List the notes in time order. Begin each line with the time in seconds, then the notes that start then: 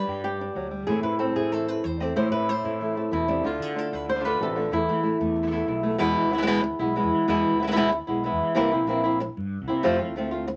Already playing: G3 D4 B4
0.07 G2 G4
0.24 G4
0.41 D4
0.55 D2 F#3
0.71 G3
0.87 A2 E3 A3 C4 E4 G#4
1.03 A2 A3 C4 E4 B4
1.19 C4 A4, muted nylon-string guitar stroke
1.35 A2 A3 C4 E4 G#4
1.51 E3 A3 C4 E4 A4
1.68 A3 C4 E4 B4
1.84 E2 C5, muted nylon-string guitar stroke
2.00 A3 C4 E4 D5
2.16 A2 E3 A3 C4 E4 C5
2.32 A2 A3 C4 E4 B4
2.49 A3 C5, muted nylon-string guitar stroke
2.64 A2 A3 C4 E4
2.80 E3 A3 C4 E4
2.95 A3 C4 E4 A4
3.11 E2 B2 E4, muted nylon-string guitar stroke
3.27 C3 A3 C4 D4 E4
3.43 D2 D3 A3 D4 F4
3.60 D3 G#4
3.76 A3 D4 F4 A4
3.92 D2 B4
4.08 C5, muted nylon-string guitar stroke
4.15 D3 A3 D4 F4
4.20 D3 A3 D4 F4
4.24 D3 A3 D4 F4 B4
4.40 A1 C3 D3 A3 D4 F4 A4
4.55 D3 A3 D4 F4
4.71 E2 E3 A3 B3 E4
4.88 E3 A3
5.03 A3 B3 E4
5.20 E2 A3
5.36 muted nylon-string guitar stroke
5.42 E3 A3 B3 E4
5.47 E3 A3 B3 E4
5.51 E3 A3 B3 E4
5.67 B1 E3 A3 B3 E4
5.83 A3 B3 E4
5.98 E2 B2 E3 G#3 B3 E4
6.15 E3
6.23 D2
6.31 E3 G#3 B3 E4
6.38 E3 G#3 B3 E4
6.42 E3 G#3 B3 E4
6.47 B2 E3 G#3 B3 E4
6.63 muted nylon-string guitar stroke
6.79 B1 G#3 B3 E4
6.96 E3 G#3 B3 E4
7.03 E2
7.11 E3
7.27 E2 B2 E3 G#3 B3 E4
7.43 E3
7.51 D2
7.60 E3 G#3 B3 E4
7.64 E3 G#3 B3 E4
7.69 E3 G#3 B3 E4
7.73 B2 E3 G#3 E4
7.77 B3 E4
7.92 muted nylon-string guitar stroke
8.07 B1 G#3 B3 E4
8.24 E3 G#3 B3 E4
8.32 E2
8.40 E3
8.55 C2 C3 E3 A#3 C4 E4
8.72 C3 A#3 C4 E4
8.81 A#1
8.87 E3 A#3 C4 E4
9.03 A#3 C4 E4
9.20 muted nylon-string guitar stroke
9.37 G2
9.61 C2
9.68 C3 A#3 C4 E4
9.83 F2 C3 F3 A3 C4 F4
9.99 F3 A3 C4 F4
10.09 D2
10.16 F3 A3 C4 F4
10.31 A3 C4 F4
10.48 muted nylon-string guitar stroke